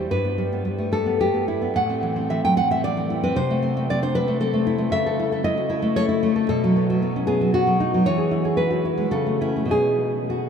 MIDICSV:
0, 0, Header, 1, 2, 480
1, 0, Start_track
1, 0, Tempo, 539084
1, 110, Time_signature, 3, 2, 24, 8
1, 2989, Tempo, 522193
1, 7789, Tempo, 579151
1, 9375, End_track
2, 0, Start_track
2, 0, Title_t, "Nylon-string guitar"
2, 0, Program_c, 0, 24
2, 0, Note_on_c, 0, 55, 60
2, 0, Note_on_c, 0, 64, 60
2, 0, Note_on_c, 0, 67, 59
2, 96, Note_off_c, 0, 64, 0
2, 97, Note_on_c, 0, 43, 69
2, 99, Note_on_c, 0, 71, 91
2, 102, Note_off_c, 0, 55, 0
2, 102, Note_off_c, 0, 67, 0
2, 218, Note_on_c, 0, 59, 55
2, 339, Note_on_c, 0, 55, 54
2, 456, Note_off_c, 0, 59, 0
2, 467, Note_on_c, 0, 59, 57
2, 567, Note_off_c, 0, 55, 0
2, 578, Note_on_c, 0, 55, 52
2, 698, Note_on_c, 0, 57, 55
2, 797, Note_off_c, 0, 71, 0
2, 808, Note_off_c, 0, 55, 0
2, 818, Note_on_c, 0, 55, 58
2, 824, Note_on_c, 0, 69, 97
2, 934, Note_off_c, 0, 59, 0
2, 945, Note_on_c, 0, 59, 57
2, 1057, Note_off_c, 0, 69, 0
2, 1063, Note_off_c, 0, 55, 0
2, 1073, Note_on_c, 0, 55, 57
2, 1074, Note_on_c, 0, 67, 89
2, 1181, Note_off_c, 0, 59, 0
2, 1192, Note_on_c, 0, 59, 56
2, 1314, Note_off_c, 0, 67, 0
2, 1318, Note_on_c, 0, 64, 62
2, 1428, Note_off_c, 0, 59, 0
2, 1431, Note_off_c, 0, 57, 0
2, 1438, Note_on_c, 0, 59, 57
2, 1519, Note_off_c, 0, 43, 0
2, 1561, Note_off_c, 0, 55, 0
2, 1561, Note_off_c, 0, 59, 0
2, 1562, Note_off_c, 0, 64, 0
2, 1564, Note_on_c, 0, 45, 73
2, 1566, Note_on_c, 0, 78, 105
2, 1688, Note_on_c, 0, 60, 56
2, 1804, Note_on_c, 0, 52, 55
2, 1913, Note_off_c, 0, 60, 0
2, 1923, Note_on_c, 0, 60, 63
2, 2028, Note_off_c, 0, 78, 0
2, 2042, Note_off_c, 0, 52, 0
2, 2049, Note_on_c, 0, 76, 98
2, 2053, Note_on_c, 0, 52, 61
2, 2166, Note_off_c, 0, 76, 0
2, 2172, Note_off_c, 0, 52, 0
2, 2176, Note_on_c, 0, 54, 55
2, 2179, Note_on_c, 0, 79, 110
2, 2281, Note_off_c, 0, 54, 0
2, 2284, Note_on_c, 0, 52, 62
2, 2285, Note_off_c, 0, 79, 0
2, 2289, Note_on_c, 0, 78, 108
2, 2399, Note_off_c, 0, 60, 0
2, 2402, Note_off_c, 0, 78, 0
2, 2409, Note_on_c, 0, 60, 60
2, 2416, Note_on_c, 0, 76, 103
2, 2524, Note_off_c, 0, 52, 0
2, 2526, Note_off_c, 0, 76, 0
2, 2529, Note_on_c, 0, 74, 112
2, 2535, Note_on_c, 0, 52, 66
2, 2635, Note_off_c, 0, 60, 0
2, 2646, Note_on_c, 0, 60, 62
2, 2762, Note_on_c, 0, 64, 69
2, 2863, Note_off_c, 0, 74, 0
2, 2870, Note_off_c, 0, 60, 0
2, 2880, Note_on_c, 0, 60, 67
2, 2881, Note_on_c, 0, 71, 104
2, 2955, Note_off_c, 0, 45, 0
2, 2989, Note_off_c, 0, 52, 0
2, 2993, Note_on_c, 0, 48, 84
2, 2994, Note_off_c, 0, 60, 0
2, 2994, Note_off_c, 0, 64, 0
2, 2994, Note_off_c, 0, 71, 0
2, 2996, Note_on_c, 0, 72, 109
2, 3125, Note_on_c, 0, 57, 62
2, 3235, Note_on_c, 0, 60, 65
2, 3355, Note_off_c, 0, 57, 0
2, 3366, Note_on_c, 0, 57, 60
2, 3458, Note_off_c, 0, 72, 0
2, 3475, Note_off_c, 0, 60, 0
2, 3485, Note_on_c, 0, 60, 63
2, 3490, Note_on_c, 0, 74, 106
2, 3601, Note_off_c, 0, 74, 0
2, 3602, Note_on_c, 0, 62, 62
2, 3607, Note_on_c, 0, 72, 105
2, 3713, Note_off_c, 0, 60, 0
2, 3719, Note_on_c, 0, 71, 112
2, 3720, Note_off_c, 0, 72, 0
2, 3724, Note_on_c, 0, 60, 65
2, 3825, Note_off_c, 0, 57, 0
2, 3836, Note_on_c, 0, 57, 68
2, 3944, Note_off_c, 0, 71, 0
2, 3948, Note_off_c, 0, 60, 0
2, 3954, Note_on_c, 0, 69, 108
2, 3959, Note_on_c, 0, 60, 68
2, 4061, Note_off_c, 0, 57, 0
2, 4072, Note_on_c, 0, 57, 69
2, 4193, Note_on_c, 0, 64, 77
2, 4289, Note_off_c, 0, 57, 0
2, 4300, Note_on_c, 0, 57, 67
2, 4308, Note_off_c, 0, 62, 0
2, 4388, Note_off_c, 0, 48, 0
2, 4405, Note_off_c, 0, 69, 0
2, 4421, Note_off_c, 0, 57, 0
2, 4421, Note_off_c, 0, 64, 0
2, 4425, Note_on_c, 0, 76, 112
2, 4426, Note_on_c, 0, 49, 82
2, 4427, Note_off_c, 0, 60, 0
2, 4558, Note_on_c, 0, 69, 73
2, 4678, Note_on_c, 0, 64, 66
2, 4784, Note_off_c, 0, 69, 0
2, 4795, Note_on_c, 0, 69, 66
2, 4882, Note_off_c, 0, 76, 0
2, 4897, Note_off_c, 0, 64, 0
2, 4907, Note_on_c, 0, 64, 73
2, 4907, Note_on_c, 0, 75, 108
2, 5022, Note_off_c, 0, 64, 0
2, 5026, Note_on_c, 0, 66, 61
2, 5139, Note_on_c, 0, 64, 73
2, 5256, Note_on_c, 0, 57, 70
2, 5361, Note_off_c, 0, 75, 0
2, 5378, Note_off_c, 0, 69, 0
2, 5385, Note_on_c, 0, 73, 124
2, 5389, Note_on_c, 0, 69, 74
2, 5487, Note_off_c, 0, 64, 0
2, 5495, Note_off_c, 0, 73, 0
2, 5498, Note_on_c, 0, 64, 66
2, 5618, Note_off_c, 0, 57, 0
2, 5629, Note_on_c, 0, 57, 74
2, 5735, Note_off_c, 0, 69, 0
2, 5746, Note_on_c, 0, 69, 74
2, 5750, Note_off_c, 0, 66, 0
2, 5837, Note_off_c, 0, 49, 0
2, 5856, Note_off_c, 0, 69, 0
2, 5865, Note_off_c, 0, 64, 0
2, 5869, Note_on_c, 0, 69, 111
2, 5870, Note_on_c, 0, 47, 79
2, 5876, Note_off_c, 0, 57, 0
2, 6005, Note_on_c, 0, 54, 67
2, 6118, Note_on_c, 0, 59, 60
2, 6234, Note_off_c, 0, 54, 0
2, 6245, Note_on_c, 0, 54, 66
2, 6348, Note_off_c, 0, 59, 0
2, 6359, Note_on_c, 0, 59, 61
2, 6486, Note_on_c, 0, 61, 59
2, 6571, Note_off_c, 0, 69, 0
2, 6582, Note_off_c, 0, 59, 0
2, 6585, Note_on_c, 0, 68, 101
2, 6593, Note_on_c, 0, 59, 70
2, 6705, Note_off_c, 0, 54, 0
2, 6716, Note_on_c, 0, 54, 60
2, 6819, Note_off_c, 0, 68, 0
2, 6825, Note_off_c, 0, 59, 0
2, 6833, Note_on_c, 0, 66, 105
2, 6836, Note_on_c, 0, 59, 64
2, 6943, Note_off_c, 0, 54, 0
2, 6954, Note_on_c, 0, 54, 64
2, 7072, Note_off_c, 0, 59, 0
2, 7075, Note_on_c, 0, 63, 76
2, 7190, Note_off_c, 0, 61, 0
2, 7193, Note_off_c, 0, 54, 0
2, 7204, Note_on_c, 0, 54, 65
2, 7269, Note_off_c, 0, 47, 0
2, 7285, Note_off_c, 0, 66, 0
2, 7309, Note_off_c, 0, 63, 0
2, 7312, Note_on_c, 0, 73, 108
2, 7314, Note_off_c, 0, 54, 0
2, 7320, Note_on_c, 0, 52, 82
2, 7422, Note_on_c, 0, 68, 63
2, 7544, Note_on_c, 0, 64, 59
2, 7659, Note_off_c, 0, 68, 0
2, 7670, Note_on_c, 0, 68, 60
2, 7773, Note_off_c, 0, 73, 0
2, 7775, Note_off_c, 0, 64, 0
2, 7781, Note_on_c, 0, 71, 94
2, 7786, Note_on_c, 0, 64, 63
2, 7891, Note_off_c, 0, 68, 0
2, 7894, Note_on_c, 0, 66, 56
2, 8004, Note_off_c, 0, 64, 0
2, 8014, Note_on_c, 0, 64, 58
2, 8118, Note_on_c, 0, 56, 56
2, 8227, Note_off_c, 0, 52, 0
2, 8229, Note_off_c, 0, 71, 0
2, 8230, Note_on_c, 0, 49, 72
2, 8233, Note_on_c, 0, 69, 97
2, 8246, Note_off_c, 0, 56, 0
2, 8251, Note_off_c, 0, 66, 0
2, 8253, Note_off_c, 0, 64, 0
2, 8357, Note_on_c, 0, 57, 57
2, 8474, Note_off_c, 0, 69, 0
2, 8477, Note_on_c, 0, 61, 58
2, 8483, Note_on_c, 0, 64, 95
2, 8595, Note_off_c, 0, 57, 0
2, 8605, Note_on_c, 0, 57, 56
2, 8677, Note_off_c, 0, 49, 0
2, 8680, Note_on_c, 0, 47, 69
2, 8693, Note_off_c, 0, 57, 0
2, 8697, Note_on_c, 0, 59, 48
2, 8707, Note_off_c, 0, 61, 0
2, 8710, Note_on_c, 0, 63, 50
2, 8722, Note_off_c, 0, 64, 0
2, 8726, Note_on_c, 0, 68, 104
2, 9200, Note_off_c, 0, 68, 0
2, 9214, Note_on_c, 0, 66, 68
2, 9375, Note_off_c, 0, 47, 0
2, 9375, Note_off_c, 0, 59, 0
2, 9375, Note_off_c, 0, 63, 0
2, 9375, Note_off_c, 0, 66, 0
2, 9375, End_track
0, 0, End_of_file